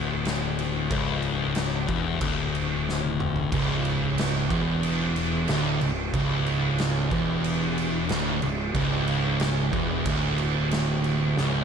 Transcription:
Already playing: picked electric bass D1, distorted electric guitar D2
0.25 snare, crash
0.59 crash
0.90 picked electric bass C#1, distorted electric guitar C#2, kick, crash
1.22 crash
1.55 snare, crash
1.88 picked electric bass E1, distorted electric guitar E2, kick, crash
2.21 picked electric bass D1, distorted electric guitar D2, kick, crash
2.55 crash
2.89 snare
3.04 high tom
3.20 mid tom
3.36 floor tom
3.52 picked electric bass C#1, distorted electric guitar C#2, kick, crash
3.85 crash
4.18 snare, crash
4.50 picked electric bass E1, distorted electric guitar E2, kick, crash
4.83 crash
5.16 crash
5.48 picked electric bass D1, distorted electric guitar D2, snare, crash
5.81 picked electric bass C#1, distorted electric guitar C#2, crash
6.14 picked electric bass C#1, distorted electric guitar C#2, kick, crash
6.46 crash
6.78 snare, crash
7.11 picked electric bass E1, distorted electric guitar E2, kick, crash
7.44 crash
7.78 crash
8.09 picked electric bass D1, distorted electric guitar D2, snare, crash
8.42 picked electric bass C#1, distorted electric guitar C#2, crash
8.74 picked electric bass C#1, distorted electric guitar C#2, kick, crash
9.08 crash
9.40 snare, crash
9.73 picked electric bass E1, distorted electric guitar E2, kick, crash
10.05 picked electric bass D1, distorted electric guitar D2, kick, crash
10.38 crash
10.71 snare, crash
11.04 crash
11.37 picked electric bass C#1, distorted electric guitar C#2, snare

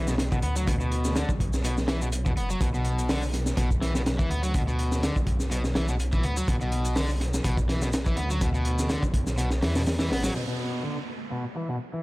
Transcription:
Already playing: detuned saw bass B1
0.07 overdriven electric guitar B2, snare, shaker
0.18 snare, closed hi-hat, shaker
0.32 overdriven electric guitar B2, kick, shaker
0.42 detuned saw bass D2, overdriven electric guitar B3, closed hi-hat
0.56 overdriven electric guitar F#3, closed hi-hat, shaker
0.67 overdriven electric guitar B2, kick, closed hi-hat, shaker
0.80 overdriven electric guitar B2, shaker
0.92 closed hi-hat
1.05 snare, shaker
1.16 overdriven electric guitar D3, snare, closed hi-hat, shaker
1.29 detuned saw bass B1, kick, shaker
1.40 kick, closed hi-hat
1.53 snare, shaker
1.64 overdriven electric guitar B2, closed hi-hat, shaker
1.77 snare, shaker
1.88 overdriven electric guitar E3, snare, closed hi-hat
2.02 overdriven electric guitar B2, shaker
2.12 closed hi-hat, shaker
2.26 detuned saw bass E2, overdriven electric guitar B2, kick, shaker
2.37 detuned saw bass F#1, overdriven electric guitar B3, closed hi-hat
2.50 overdriven electric guitar F#3, shaker
2.61 detuned saw bass B1, overdriven electric guitar B2, kick, closed hi-hat, shaker
2.74 overdriven electric guitar B2, shaker
2.85 closed hi-hat
2.99 closed hi-hat, shaker
3.09 overdriven electric guitar D3, snare, open hi-hat, shaker
3.23 shaker
3.34 snare, closed hi-hat
3.46 snare, shaker
3.57 detuned saw bass B1, overdriven electric guitar B2, kick, closed hi-hat, shaker
3.71 kick, shaker
3.81 overdriven electric guitar E3, snare, closed hi-hat
3.95 overdriven electric guitar B2, snare, shaker
4.06 snare, closed hi-hat, shaker
4.19 overdriven electric guitar E3, kick, shaker
4.30 detuned saw bass D2, overdriven electric guitar B3, closed hi-hat
4.43 overdriven electric guitar F#3, closed hi-hat, shaker
4.54 overdriven electric guitar B2, kick, closed hi-hat, shaker
4.67 overdriven electric guitar B2, shaker
4.79 closed hi-hat
4.92 snare, shaker
5.03 overdriven electric guitar D3, snare, closed hi-hat, shaker
5.16 detuned saw bass B1, kick, shaker
5.27 kick, closed hi-hat
5.40 snare, shaker
5.51 overdriven electric guitar B2, closed hi-hat, shaker
5.64 snare, shaker
5.75 overdriven electric guitar E3, snare, closed hi-hat
5.88 overdriven electric guitar B2, shaker
5.99 closed hi-hat, shaker
6.12 overdriven electric guitar E3, kick, shaker
6.23 detuned saw bass D2, overdriven electric guitar B3, closed hi-hat
6.37 overdriven electric guitar F#3, shaker
6.48 detuned saw bass B1, overdriven electric guitar B2, kick, closed hi-hat, shaker
6.61 overdriven electric guitar B2, shaker
6.72 closed hi-hat
6.85 closed hi-hat, shaker
6.96 overdriven electric guitar D3, snare, open hi-hat, shaker
7.09 shaker
7.21 snare, closed hi-hat
7.34 snare, shaker
7.44 detuned saw bass B1, overdriven electric guitar B2, kick, closed hi-hat, shaker
7.57 kick, shaker
7.69 overdriven electric guitar E3, snare, closed hi-hat
7.82 overdriven electric guitar B2, snare, shaker
7.93 snare, closed hi-hat, shaker
8.06 overdriven electric guitar E3, kick, shaker
8.17 detuned saw bass D2, overdriven electric guitar B3, closed hi-hat
8.30 overdriven electric guitar F#3, closed hi-hat, shaker
8.41 overdriven electric guitar B2, kick, closed hi-hat, shaker
8.54 overdriven electric guitar B2, shaker
8.65 closed hi-hat
8.79 snare, shaker
8.90 overdriven electric guitar D3, snare, closed hi-hat, shaker
9.03 detuned saw bass B1, kick, shaker
9.14 kick, closed hi-hat
9.27 snare, shaker
9.38 overdriven electric guitar B2, closed hi-hat, shaker
9.51 snare, shaker
9.62 detuned saw bass E2, overdriven electric guitar E3, snare, open hi-hat
9.75 overdriven electric guitar B2, snare, open hi-hat, shaker
9.86 snare, open hi-hat, shaker
9.99 overdriven electric guitar E3, snare, open hi-hat, shaker
10.11 detuned saw bass A1, overdriven electric guitar B3, snare, open hi-hat
10.24 overdriven electric guitar F#3, snare, open hi-hat, shaker
10.35 overdriven electric guitar B2, downlifter
10.48 overdriven electric guitar B2
10.83 overdriven electric guitar D3
11.31 overdriven electric guitar B2
11.56 overdriven electric guitar E3
11.69 overdriven electric guitar B2
11.94 overdriven electric guitar E3

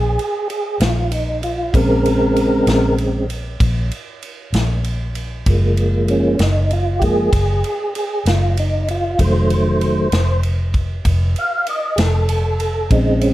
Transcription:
Already playing: fingered electric bass A#1, tonewheel organ G#4
0.19 ride
0.50 tonewheel organ G#4, ride
0.80 fingered electric bass A#1, tonewheel organ F4, snare, ride
1.11 tonewheel organ D#4, ride
1.43 tonewheel organ F4, ride
1.74 fingered electric bass A#1, tonewheel organ C#3 G#3 C4 A#4, kick, ride
2.05 ride
2.36 ride
2.67 fingered electric bass A#1, snare, ride
2.98 tonewheel organ C#3 G#3 C4, ride
3.30 ride
3.60 fingered electric bass A#1, kick, ride
3.91 ride
4.22 ride
4.53 fingered electric bass A#1, snare, ride
4.84 ride
5.15 ride
5.46 fingered electric bass F#1, tonewheel organ F3 G#3 A#3, kick, ride
5.77 ride
6.08 tonewheel organ C#4, ride
6.39 fingered electric bass F#1, tonewheel organ D#4, snare, ride
6.71 tonewheel organ F4, ride
6.99 tonewheel organ F3 G#3 G4, kick, ride
7.04 tonewheel organ A#3 G#4
7.33 fingered electric bass F#1, kick, snare, ride
7.64 ride
7.95 tonewheel organ G#4, ride
8.25 fingered electric bass F#1, tonewheel organ F4, snare, ride
8.57 tonewheel organ D#4, ride
8.88 tonewheel organ F4, ride
9.19 fingered electric bass F1, tonewheel organ D#3 F#3 A3 C5, kick, ride
9.50 ride
9.81 ride
10.12 fingered electric bass F1, snare, ride
10.43 ride
10.74 kick, ride
11.05 fingered electric bass F1, kick, ride
11.36 tonewheel organ F5, ride
11.67 tonewheel organ D#5, ride
11.96 fingered electric bass F1, tonewheel organ G#4, snare, ride
12.00 tonewheel organ A4
12.29 ride
12.60 ride
12.90 fingered electric bass A#1, tonewheel organ C#3 G#3 C4 D#4, kick, ride
13.21 tonewheel organ C#4, ride

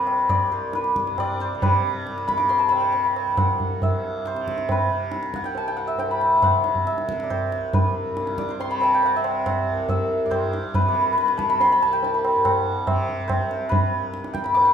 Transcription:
Already playing: tanpura C2 G2 C3, santur B4 D5
0.07 tabla na
0.29 santur D5, tabla na, tabla ge
0.44 tanpura C2
0.52 santur C5
0.73 santur B4, tabla te
0.84 tabla te
0.96 tanpura G2, tabla ke
1.07 tabla te
1.18 santur D5, tabla na, tabla ge
1.40 santur C5, tabla te
1.52 tanpura C3, santur C5
1.60 tanpura G2, santur B4, tabla tin, tabla ge
2.06 tabla te
2.16 tanpura C3, tabla te
2.28 santur B5, tabla ke
2.37 santur D6, tabla te
2.49 santur C6, tabla tin
2.59 santur A5
2.69 tanpura C3, santur B5, tabla na
2.80 santur G5
2.92 santur A5, tabla tin
3.04 santur B5
3.16 tabla na
3.27 tanpura C2
3.37 santur F#5, tabla na, tabla ge
3.60 tabla ge
3.80 tanpura G2, santur E5, tabla tin, tabla ge
4.26 santur C5, tabla te
4.34 tanpura C3, tabla te
4.48 tabla ke
4.58 tabla te
4.69 santur B4, tabla tin, tabla ge
4.87 tanpura C3
5.12 tabla te
5.23 tabla te
5.34 santur F#5, tabla ke
5.41 tanpura C2, tabla te
5.45 santur G5
5.55 santur A5, tabla tin
5.68 santur G5
5.77 santur F#5
5.87 santur E5
5.95 tanpura G2, santur G5, tabla tin
6.11 santur B5
6.21 tabla na
6.43 santur F#5, tabla na, tabla ge
6.48 tanpura C3
6.64 tabla te
6.75 tabla ge
6.87 santur E5, tabla te
6.98 tanpura C3, tabla te
7.09 tabla ke
7.20 santur D5, tabla te
7.30 santur C5, tabla na, tabla ge
7.52 tanpura C2, tabla te
7.74 santur B4, tabla tin, tabla ge
8.11 tanpura G2
8.17 tabla te
8.27 tabla te
8.38 santur D5, tabla ke
8.49 santur C5, tabla te
8.60 santur C6, tabla tin
8.64 tanpura C3
8.71 santur B5
8.80 santur A5 B5, tabla na
8.94 santur G5
9.03 santur F#5, tabla tin
9.16 tanpura C3, santur E5
9.24 tabla na
9.46 santur F#5, tabla na, tabla ge
9.70 tanpura C2
9.89 santur E5, tabla tin, tabla ge
10.26 tanpura G2, santur D5
10.31 santur C5, tabla na, tabla ge
10.53 tabla te
10.74 tanpura C3, santur B4, tabla tin, tabla ge
10.81 santur B4
10.88 santur B4
10.94 santur B4
11.01 santur B4
11.07 santur B4
11.13 santur B4
11.18 santur B4, tabla te
11.25 tanpura C3, santur B4, tabla te
11.38 santur A5, tabla ke
11.49 santur B5, tabla te
11.61 santur C6, tabla tin
11.72 santur B5
11.82 tanpura C2, santur A5
11.93 santur G5
12.03 santur A5, tabla tin
12.14 santur B5
12.25 tabla na
12.35 tanpura G2
12.45 santur F#5, tabla na, tabla ge
12.87 tanpura C3, santur E5, tabla na, tabla ge
13.09 tabla ge
13.28 santur C5, tabla na, tabla ge
13.40 tanpura C3
13.51 tabla te
13.69 santur B4, tabla tin, tabla ge
13.93 tanpura C2
14.14 tabla te
14.24 tabla te
14.33 santur G5, tabla ke
14.43 tanpura G2, santur B5, tabla te
14.54 santur D6, tabla tin
14.65 santur C6

